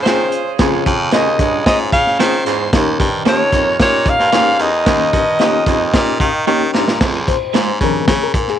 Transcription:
Already playing: horn section C#4 F4 G#4
0.03 baritone saxophone D#3, clean electric guitar C4 F4, alto saxophone C5, snare, closed hi-hat
0.07 reed electric piano C#4 F4 G#4 C5, clean electric guitar G#4 C5
0.32 closed hi-hat
0.59 baritone saxophone C#2 F2, reed electric piano C#3 C#4 F4 G#4 C5, kick, snare, closed hi-hat
0.86 baritone saxophone F2, kick, closed hi-hat
1.11 baritone saxophone D#2, clean electric guitar C4 F4 G#4 C5, reed electric piano C#4 F4 G#4 A#4, alto saxophone D#5, snare, closed hi-hat
1.39 baritone saxophone C#2 G2, kick, closed hi-hat
1.66 baritone saxophone G#2, reed electric piano C#4 F4 G#4 C#5, alto saxophone D#5, kick, snare, closed hi-hat
1.92 baritone saxophone C#3, alto saxophone F5, kick, closed hi-hat
2.07 snare
2.19 baritone saxophone D#3, clean electric guitar C4 F4 G#4 C5, reed electric piano C#4 F4 G#4 C5, alto saxophone C5, snare, closed hi-hat
2.46 baritone saxophone E2 G#2, closed hi-hat
2.72 baritone saxophone D#2, reed electric piano D#3 C#4 D#4 G4 A#4, horn section D#4 G4 A#4, kick, snare, closed hi-hat
3.00 baritone saxophone G2, kick, closed hi-hat
3.25 baritone saxophone F2, clean electric guitar A#3 D#4 G4 C#5, reed electric piano C#4 D#4 G4 C#5, alto saxophone C#5, snare, closed hi-hat
3.52 baritone saxophone D#2 F2, kick, closed hi-hat
3.79 baritone saxophone A#2, reed electric piano C#4 D#4 G4 A#4, alto saxophone C#5, kick, snare, closed hi-hat
4.06 alto saxophone F5, kick, closed hi-hat
4.19 baritone saxophone G2, snare
4.32 baritone saxophone G#2, clean electric guitar A#3 D#4 G4 C#5, reed electric piano C#4 D#4 G4 A#4, snare, closed hi-hat
4.59 baritone saxophone E2, alto saxophone D#5, closed hi-hat
4.86 baritone saxophone D#2, reed electric piano D#3 C#4 D#4 G4 A#4, kick, snare, closed hi-hat
5.13 baritone saxophone G2, kick, closed hi-hat
5.39 baritone saxophone F2, clean electric guitar A#3 D#4 G4 C#5, reed electric piano C#4 D#4 G4 A#4, snare, closed hi-hat
5.66 baritone saxophone D#2 F2, kick, closed hi-hat
5.94 baritone saxophone A#2, reed electric piano C#4 D#4 G4 A#4, kick, snare, closed hi-hat
6.20 baritone saxophone D#3, reed electric piano F5, kick, closed hi-hat
6.47 baritone saxophone D#3, clean electric guitar A#3 D#4 G4 C#5, reed electric piano C#4 D#4 G4 A#4 G5
6.73 baritone saxophone G2 A#2, reed electric piano A#5, snare
6.88 snare
7.01 baritone saxophone C#2 F2, kick, snare, crash
7.28 reed electric piano C5, kick, closed hi-hat
7.53 baritone saxophone G#2, clean electric guitar G#3 C#4 F4 C5, snare, closed hi-hat
7.81 baritone saxophone G2 C#3, reed electric piano D#3 F3 C4 A#4, kick, closed hi-hat
8.08 baritone saxophone C#3, reed electric piano G#4, kick, snare, closed hi-hat
8.24 reed electric piano A#4
8.34 baritone saxophone G#2, kick, closed hi-hat
8.48 reed electric piano G#4, snare

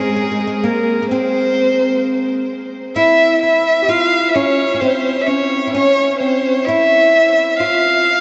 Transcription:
Already playing: tine electric piano G#3, violin G#4
0.01 oud G#3
0.09 oud G#3
0.16 oud G#3
0.24 oud G#3
0.32 oud G#3
0.40 oud G#3
0.47 oud G#3
0.64 oud A#3, tine electric piano A#3, violin A#4
1.02 oud A#3
1.10 oud C4, tine electric piano C4, violin C5
2.96 oud E4, tine electric piano E4, violin E5
3.42 tine electric piano E4, violin E5
3.82 tine electric piano G4
3.88 oud F4, tine electric piano F4, violin F5
4.29 violin E5
4.34 oud C#4, tine electric piano C#4, violin C#5
4.74 oud C#4
4.80 oud C4, tine electric piano C4, violin C5
5.21 violin E5
5.27 tine electric piano C#4, violin C#5
5.67 oud E4
5.73 tine electric piano C#4, oud C#4, violin C#5
6.19 tine electric piano C4, violin C5
6.65 tine electric piano E4, oud E4, violin E5
7.57 oud F4, tine electric piano F4, violin F5

